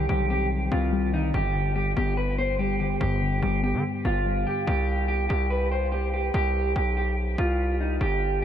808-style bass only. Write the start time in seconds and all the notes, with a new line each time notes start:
0.09 B1
0.72 C2
1.34 G1
1.97 G1
3.01 G1
3.42 G1
3.74 D3
4.05 G1
4.67 C2
5.30 C2
6.34 C2
6.76 B1
7.38 C2
8.01 G1